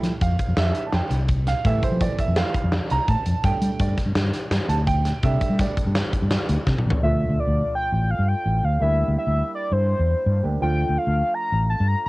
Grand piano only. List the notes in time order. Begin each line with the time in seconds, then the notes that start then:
0.22 F5
0.58 E5
0.87 A5
0.94 G5
1.48 F5
1.65 E3 G3 A3 E5
1.83 C5
2.01 D5
2.20 E5
2.36 G3 A3 E4 F5
2.91 A#5
3.09 A5
3.44 G3 A3 D4 G5
3.81 D5
4.69 A5
4.87 G5
5.23 G3 A3 D4 E5
5.61 D5
7.02 F3 A3 D4 F4
8.80 G3 A#3 D4 E4
10.43 G3 A#3 D4 G4
10.60 F3 A3 D4 F4